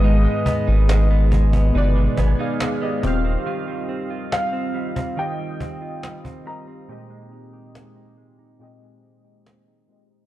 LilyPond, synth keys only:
\new Staff \with { instrumentName = "Synth keys" } { \time 4/4 \key ees \major \tempo 4 = 70 << { r2 r8 <ces'' aes''>16 <aes' f''>8 <g' ees''>8 r16 | r1 | r1 | } \\ { <aes, aes ces'' ees''>4~ <aes, aes ces'' ees''>16 r8. <ces aes ces'' d''>4. <ees c' g' f''>8~ | <ees c' g' f''>4~ <ees c' g' f''>16 r8. <ees c' g' ees''>4. <ees c' g' ees''>8 | <bes, aes c' g' ees''>4.~ <bes, aes c' g' ees''>16 r16 <bes, aes c' g' ees''>4. <bes, aes c' g' ees''>8 | } >> }